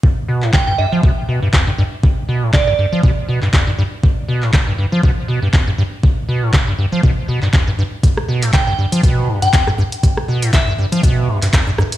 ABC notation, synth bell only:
X:1
M:4/4
L:1/16
Q:"Swing 16ths" 1/4=120
K:Gmix
V:1 name="Synth bell"
z4 g g e2 z8 | z4 d d z8 z2 | z16 | z16 |
z4 g g z4 z g2 z3 | z4 e4 z8 |]